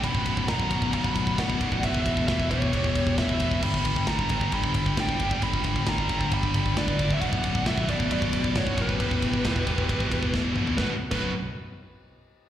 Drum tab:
CC |----------------|----------------|x---------------|----------------|
RD |x-x-x-x-x-x-x-x-|x-x-x-x-x-x-x-x-|--x-x-x-x-x-x-x-|x-x-x-x-x-x-x-x-|
SD |----o-------o---|----o-------o---|----o-------o---|----o-------o---|
T2 |----------------|----------------|----------------|----------------|
FT |----------------|----------------|----------------|----------------|
BD |oooooooooooooooo|oooooooooooooooo|oooooooooooooooo|oooooooooooooooo|

CC |----------------|----------------|---x------------|
RD |x-x-x-x-x-x-x-x-|x-x-x-x-x-x-----|----------------|
SD |----o-------o---|----o-------o---|o---------------|
T2 |----------------|--------------o-|----------------|
FT |----------------|---------------o|----------------|
BD |oooooooooooooooo|ooooooooooooo---|o--o------------|